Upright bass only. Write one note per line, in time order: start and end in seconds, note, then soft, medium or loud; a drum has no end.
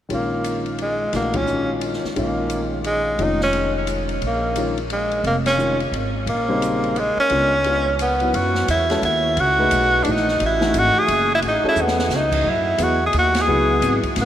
0.10 1.09 A#1 medium
1.13 1.99 A#1 medium
2.04 muted upright bass stroke soft
2.17 3.15 A#1 medium
3.18 4.18 F1 medium
4.22 5.21 A#1 medium
5.24 5.89 F1 medium
5.91 6.24 G#1 medium
6.26 7.13 A#1 medium
7.17 muted upright bass stroke soft
7.31 8.30 C#2 medium
8.34 8.67 F#2 medium
8.68 9.02 E2 medium
9.02 9.36 D#2 medium
9.37 9.70 C#2 medium
9.72 10.05 B1 medium
10.07 10.39 A#1 medium
10.41 10.74 A1 medium
10.74 10.94 G#1 medium
10.96 muted upright bass stroke soft
11.08 11.41 F#1 medium
11.42 11.62 A1 medium
11.64 muted upright bass stroke soft
11.76 12.08 E2 medium
12.09 12.43 C#2 medium
12.44 12.78 F#2 medium
12.79 13.13 E2 medium
13.14 13.47 D#2 medium
13.48 13.81 C#2 medium
13.82 14.02 G#1 medium
14.03 muted upright bass stroke soft
14.17 14.25 A1 medium